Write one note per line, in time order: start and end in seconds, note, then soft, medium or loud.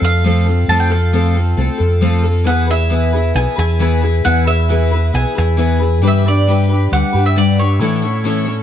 0.01 0.65 F2 medium
0.01 0.24 F4 soft
0.01 0.25 A4 soft
0.01 0.66 F5 loud
0.06 0.25 C4 soft
0.24 0.46 F3 medium
0.24 0.47 A3 medium
0.24 0.47 C4 medium
0.24 0.47 F4 medium
0.24 0.45 A4 medium
0.46 0.69 C4 soft
0.46 0.69 F4 soft
0.46 0.69 A4 medium
0.68 1.53 F2 loud
0.68 0.91 F3 medium
0.68 0.91 A3 medium
0.68 0.92 C4 medium
0.68 0.90 F4 medium
0.68 0.89 A4 medium
0.68 0.74 A5 loud
0.80 0.91 G5 loud
0.90 1.13 C4 soft
0.90 1.14 F4 medium
0.90 1.13 A4 medium
0.90 2.21 F5 medium
1.13 1.35 F3 medium
1.13 1.36 A3 medium
1.13 1.36 C4 medium
1.13 1.35 F4 medium
1.13 1.33 A4 medium
1.34 1.57 C4 soft
1.34 1.58 F4 soft
1.34 1.57 A4 soft
1.57 1.68 C2 loud
1.57 1.80 A3 medium
1.57 1.80 C4 medium
1.57 1.79 F4 medium
1.57 1.77 A4 medium
1.78 2.47 F2 medium
1.78 2.01 C4 soft
1.78 2.01 F4 medium
1.78 2.01 A4 medium
2.01 2.24 F3 medium
2.01 2.24 A3 medium
2.01 2.24 C4 medium
2.01 2.24 F4 medium
2.01 2.22 A4 loud
2.23 2.46 C4 soft
2.23 2.46 F4 medium
2.23 2.46 A4 medium
2.44 3.32 E2 loud
2.44 2.68 E3 medium
2.44 2.68 B3 medium
2.44 2.69 E4 medium
2.44 2.68 G#4 medium
2.44 2.66 B4 medium
2.44 2.70 F#5 loud
2.67 2.89 E4 soft
2.67 2.90 G#4 soft
2.67 2.90 B4 medium
2.67 3.32 E5 medium
2.89 3.12 E3 medium
2.89 3.13 B3 medium
2.89 3.13 E4 medium
2.89 3.13 G#4 medium
2.89 3.11 B4 medium
3.12 3.34 E4 soft
3.12 3.35 G#4 soft
3.12 3.35 B4 soft
3.34 3.46 B1 loud
3.34 3.57 B3 medium
3.34 3.58 E4 medium
3.34 3.57 G#4 medium
3.34 3.54 B4 medium
3.34 3.58 G#5 loud
3.56 4.21 E2 medium
3.56 3.79 E4 soft
3.56 3.80 G#4 medium
3.56 3.79 B4 medium
3.56 4.24 G#5 loud
3.79 4.02 E3 medium
3.79 4.02 B3 medium
3.79 4.02 E4 medium
3.79 4.02 G#4 medium
3.79 4.00 B4 medium
4.01 4.24 E4 soft
4.01 4.25 G#4 soft
4.01 4.24 B4 medium
4.24 5.10 E2 loud
4.24 4.46 E3 medium
4.24 4.47 B3 medium
4.24 4.47 E4 medium
4.24 4.45 G#4 medium
4.24 4.44 B4 medium
4.24 4.47 F#5 loud
4.45 4.69 E4 soft
4.45 4.69 G#4 soft
4.45 4.68 B4 medium
4.45 5.10 E5 medium
4.69 4.91 E3 medium
4.69 4.92 B3 medium
4.69 4.92 E4 medium
4.69 4.92 G#4 medium
4.69 4.90 B4 medium
4.92 5.13 E4 soft
4.92 5.14 G#4 soft
4.92 5.13 B4 medium
5.13 5.24 B1 loud
5.13 5.35 B3 medium
5.13 5.36 E4 medium
5.13 5.35 G#4 medium
5.13 5.34 B4 medium
5.13 5.35 G#5 medium
5.35 6.02 E2 medium
5.35 5.57 E4 soft
5.35 5.57 G#4 medium
5.35 5.57 B4 medium
5.35 6.05 G#5 medium
5.57 5.79 E3 medium
5.57 5.80 B3 medium
5.57 5.80 E4 medium
5.57 5.80 G#4 medium
5.57 5.78 B4 medium
5.79 6.02 E4 soft
5.79 6.03 G#4 soft
5.79 6.02 B4 medium
6.02 6.87 G2 loud
6.02 6.24 G3 medium
6.02 6.25 D4 medium
6.02 6.25 G4 medium
6.02 6.23 B4 medium
6.08 6.28 E5 medium
6.24 6.47 D4 soft
6.24 6.47 G4 medium
6.24 6.46 B4 medium
6.24 6.68 D5 medium
6.47 6.69 G3 medium
6.47 6.69 D4 medium
6.47 6.70 G4 medium
6.47 6.68 B4 medium
6.69 6.91 D4 soft
6.69 6.92 G4 soft
6.69 6.91 B4 medium
6.90 7.02 D2 loud
6.90 7.13 G3 medium
6.90 7.14 D4 medium
6.90 7.14 G4 medium
6.90 7.26 F#5 loud
6.94 7.11 B4 medium
7.13 7.79 G2 medium
7.13 7.36 G4 medium
7.13 7.35 B4 medium
7.17 7.36 D4 soft
7.26 7.36 E5 medium
7.36 7.58 G3 medium
7.36 7.58 D4 medium
7.36 7.58 G4 medium
7.36 7.57 B4 medium
7.36 7.57 D5 medium
7.59 7.82 D4 soft
7.59 7.81 G4 soft
7.59 7.80 B4 medium
7.59 8.63 C#5 medium
7.79 8.63 A2 loud
7.79 8.02 A2 medium
7.79 8.02 E3 medium
7.79 8.03 A3 medium
7.79 8.03 C#4 medium
7.79 8.02 E4 medium
7.79 8.01 C#5 medium
8.02 8.24 A3 soft
8.02 8.24 C#4 medium
8.02 8.25 E4 medium
8.02 8.24 C#5 medium
8.24 8.46 A2 medium
8.24 8.46 E3 medium
8.24 8.47 A3 medium
8.24 8.46 C#4 medium
8.24 8.45 E4 medium
8.24 8.44 C#5 loud
8.45 8.63 A3 soft
8.45 8.63 C#4 soft
8.45 8.63 E4 medium
8.45 8.63 C#5 medium